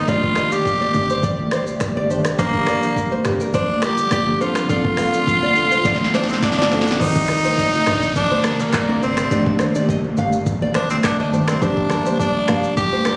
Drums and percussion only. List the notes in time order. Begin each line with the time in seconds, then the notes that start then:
0.08 kick, low conga, shaker
0.23 kick
0.35 finger snap, cross-stick, shaker
0.52 shaker
0.66 kick, shaker
0.81 high conga
0.94 mid tom, shaker
1.09 shaker
1.23 kick, low conga, shaker
1.39 high conga
1.51 finger snap, cross-stick, shaker
1.67 high conga, shaker
1.80 finger snap, kick, cross-stick, high conga, shaker
1.96 high conga
2.10 shaker
2.25 finger snap, cross-stick, shaker
2.39 kick, low conga, shaker
2.54 kick
2.67 finger snap, cross-stick, shaker
2.83 shaker
2.96 kick, shaker
3.12 high conga
3.25 finger snap, cross-stick, mid tom, shaker
3.40 shaker
3.54 kick, low conga, shaker
3.69 high conga
3.82 finger snap, cross-stick, shaker
3.97 high conga, shaker
4.11 finger snap, kick, cross-stick, high conga, shaker
4.27 high conga
4.41 shaker
4.55 finger snap, cross-stick, shaker
4.69 kick, low conga, shaker
4.85 kick
4.97 finger snap, cross-stick, open hi-hat, shaker
5.13 high conga, shaker
5.27 kick, low conga, shaker
5.42 high conga
5.56 shaker
5.71 shaker
5.85 kick, snare, low conga, shaker
5.95 snare
6.00 high conga
6.04 snare
6.14 snare, shaker
6.24 snare
6.29 high conga, shaker
6.33 snare
6.42 kick, snare, high conga, shaker
6.52 snare
6.58 snare, high conga
6.72 snare, shaker
6.81 snare
6.87 snare, shaker
7.00 kick, low conga, shaker
7.16 kick
7.28 finger snap, cross-stick, shaker
7.44 high conga, shaker
7.58 kick, shaker
7.73 high conga
7.86 finger snap, cross-stick, mid tom, shaker
8.02 shaker
8.16 kick, low conga, shaker
8.31 high conga
8.44 finger snap, cross-stick, shaker
8.59 high conga, shaker
8.73 finger snap, kick, cross-stick, clap, high conga, shaker
8.89 high conga
9.03 shaker
9.17 finger snap, cross-stick, shaker
9.31 kick, low conga, shaker
9.46 kick
9.59 finger snap, cross-stick, shaker
9.75 high conga, shaker
9.89 kick, shaker
10.04 high conga
10.17 mid tom, shaker
10.33 shaker
10.46 kick, low conga, shaker
10.62 high conga
10.74 finger snap, cross-stick, shaker
10.90 high conga, shaker
11.03 finger snap, kick, cross-stick, clap, high conga, shaker
11.20 high conga
11.33 shaker
11.48 finger snap, cross-stick, shaker
11.62 kick, low conga, shaker
11.77 kick
11.90 finger snap, cross-stick, shaker
12.06 high conga, shaker
12.20 kick, shaker
12.35 high conga
12.48 finger snap, cross-stick, mid tom, shaker
12.63 shaker
12.77 kick, low conga, shaker
12.93 high conga
13.05 finger snap, cross-stick, shaker